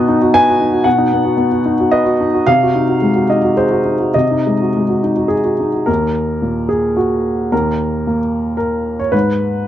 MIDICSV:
0, 0, Header, 1, 2, 480
1, 0, Start_track
1, 0, Key_signature, -6, "minor"
1, 0, Tempo, 534759
1, 762, Time_signature, 3, 2, 24, 8
1, 2694, Tempo, 548948
1, 3174, Tempo, 583090
1, 5094, Tempo, 540541
1, 8462, End_track
2, 0, Start_track
2, 0, Title_t, "Upright piano"
2, 0, Program_c, 0, 0
2, 0, Control_c, 0, 64, 127
2, 0, Note_on_c, 0, 47, 71
2, 0, Note_on_c, 0, 59, 53
2, 0, Note_on_c, 0, 63, 49
2, 0, Note_on_c, 0, 66, 52
2, 0, Note_on_c, 0, 75, 93
2, 76, Note_off_c, 0, 63, 0
2, 76, Note_on_c, 0, 63, 52
2, 137, Note_off_c, 0, 66, 0
2, 196, Note_on_c, 0, 66, 52
2, 253, Note_off_c, 0, 63, 0
2, 292, Note_off_c, 0, 75, 0
2, 306, Note_on_c, 0, 71, 55
2, 306, Note_on_c, 0, 80, 106
2, 373, Note_off_c, 0, 66, 0
2, 440, Note_on_c, 0, 66, 54
2, 487, Note_off_c, 0, 71, 0
2, 548, Note_on_c, 0, 63, 49
2, 613, Note_off_c, 0, 66, 0
2, 657, Note_on_c, 0, 66, 53
2, 726, Note_off_c, 0, 63, 0
2, 731, Note_off_c, 0, 47, 0
2, 756, Note_on_c, 0, 78, 84
2, 768, Note_on_c, 0, 47, 63
2, 770, Note_off_c, 0, 80, 0
2, 780, Control_c, 0, 64, 0
2, 785, Note_off_c, 0, 59, 0
2, 839, Note_off_c, 0, 66, 0
2, 882, Note_on_c, 0, 63, 51
2, 934, Control_c, 0, 64, 127
2, 1013, Note_on_c, 0, 59, 51
2, 1069, Note_off_c, 0, 63, 0
2, 1120, Note_on_c, 0, 66, 52
2, 1194, Note_off_c, 0, 59, 0
2, 1230, Note_on_c, 0, 59, 52
2, 1308, Note_off_c, 0, 66, 0
2, 1367, Note_on_c, 0, 66, 48
2, 1424, Note_off_c, 0, 59, 0
2, 1487, Note_on_c, 0, 63, 49
2, 1553, Note_off_c, 0, 66, 0
2, 1617, Note_on_c, 0, 66, 52
2, 1674, Note_off_c, 0, 63, 0
2, 1713, Note_off_c, 0, 78, 0
2, 1719, Note_on_c, 0, 75, 81
2, 1728, Note_on_c, 0, 71, 53
2, 1800, Note_off_c, 0, 66, 0
2, 1844, Note_on_c, 0, 66, 51
2, 1917, Note_off_c, 0, 71, 0
2, 1980, Note_on_c, 0, 63, 47
2, 2035, Note_off_c, 0, 66, 0
2, 2102, Note_on_c, 0, 66, 48
2, 2165, Note_off_c, 0, 63, 0
2, 2171, Note_off_c, 0, 47, 0
2, 2205, Note_off_c, 0, 75, 0
2, 2213, Note_on_c, 0, 77, 92
2, 2214, Note_off_c, 0, 66, 0
2, 2217, Note_on_c, 0, 48, 60
2, 2220, Control_c, 0, 64, 0
2, 2362, Note_on_c, 0, 66, 47
2, 2382, Control_c, 0, 64, 127
2, 2471, Note_on_c, 0, 63, 44
2, 2540, Note_off_c, 0, 66, 0
2, 2593, Note_on_c, 0, 66, 45
2, 2655, Note_off_c, 0, 63, 0
2, 2710, Note_on_c, 0, 56, 46
2, 2775, Note_off_c, 0, 66, 0
2, 2826, Note_on_c, 0, 66, 44
2, 2891, Note_off_c, 0, 56, 0
2, 2935, Note_off_c, 0, 77, 0
2, 2952, Note_on_c, 0, 75, 57
2, 2958, Note_on_c, 0, 63, 43
2, 3010, Note_off_c, 0, 66, 0
2, 3076, Note_on_c, 0, 66, 43
2, 3137, Note_off_c, 0, 63, 0
2, 3183, Note_off_c, 0, 75, 0
2, 3188, Note_on_c, 0, 68, 43
2, 3193, Note_on_c, 0, 72, 66
2, 3254, Note_off_c, 0, 66, 0
2, 3304, Note_on_c, 0, 66, 44
2, 3368, Note_off_c, 0, 68, 0
2, 3426, Note_on_c, 0, 63, 38
2, 3488, Note_off_c, 0, 66, 0
2, 3544, Note_on_c, 0, 66, 39
2, 3611, Note_off_c, 0, 63, 0
2, 3625, Note_off_c, 0, 48, 0
2, 3662, Note_off_c, 0, 72, 0
2, 3662, Note_on_c, 0, 75, 69
2, 3668, Control_c, 0, 64, 0
2, 3669, Note_on_c, 0, 48, 51
2, 3734, Note_off_c, 0, 66, 0
2, 3800, Note_on_c, 0, 63, 40
2, 3837, Control_c, 0, 64, 127
2, 3928, Note_on_c, 0, 56, 35
2, 3986, Note_off_c, 0, 63, 0
2, 4050, Note_on_c, 0, 66, 37
2, 4110, Note_off_c, 0, 56, 0
2, 4174, Note_on_c, 0, 56, 38
2, 4232, Note_off_c, 0, 66, 0
2, 4278, Note_on_c, 0, 66, 38
2, 4354, Note_off_c, 0, 56, 0
2, 4396, Note_on_c, 0, 63, 40
2, 4466, Note_off_c, 0, 66, 0
2, 4505, Note_on_c, 0, 66, 38
2, 4583, Note_off_c, 0, 63, 0
2, 4600, Note_on_c, 0, 68, 57
2, 4632, Note_off_c, 0, 75, 0
2, 4697, Note_off_c, 0, 66, 0
2, 4733, Note_on_c, 0, 66, 39
2, 4808, Note_off_c, 0, 68, 0
2, 4863, Note_on_c, 0, 63, 36
2, 4928, Note_off_c, 0, 66, 0
2, 4975, Note_on_c, 0, 66, 35
2, 5048, Note_off_c, 0, 63, 0
2, 5070, Note_off_c, 0, 48, 0
2, 5076, Note_on_c, 0, 70, 66
2, 5086, Note_on_c, 0, 39, 47
2, 5091, Note_off_c, 0, 66, 0
2, 5107, Control_c, 0, 64, 0
2, 5244, Control_c, 0, 64, 127
2, 5571, Note_on_c, 0, 46, 37
2, 5806, Note_off_c, 0, 70, 0
2, 5809, Note_on_c, 0, 68, 58
2, 6055, Note_off_c, 0, 68, 0
2, 6057, Note_on_c, 0, 66, 57
2, 6506, Note_off_c, 0, 39, 0
2, 6545, Note_off_c, 0, 66, 0
2, 6548, Note_on_c, 0, 39, 49
2, 6550, Note_on_c, 0, 70, 65
2, 6560, Control_c, 0, 64, 0
2, 6701, Control_c, 0, 64, 127
2, 7037, Note_on_c, 0, 58, 38
2, 7122, Note_off_c, 0, 46, 0
2, 7468, Note_off_c, 0, 70, 0
2, 7481, Note_on_c, 0, 70, 59
2, 7850, Note_off_c, 0, 70, 0
2, 7858, Note_on_c, 0, 73, 59
2, 7945, Note_off_c, 0, 39, 0
2, 7968, Note_on_c, 0, 71, 69
2, 7974, Note_on_c, 0, 44, 51
2, 7977, Note_off_c, 0, 73, 0
2, 7983, Note_off_c, 0, 58, 0
2, 7995, Control_c, 0, 64, 0
2, 8110, Control_c, 0, 64, 127
2, 8462, Note_off_c, 0, 44, 0
2, 8462, Note_off_c, 0, 71, 0
2, 8462, End_track
0, 0, End_of_file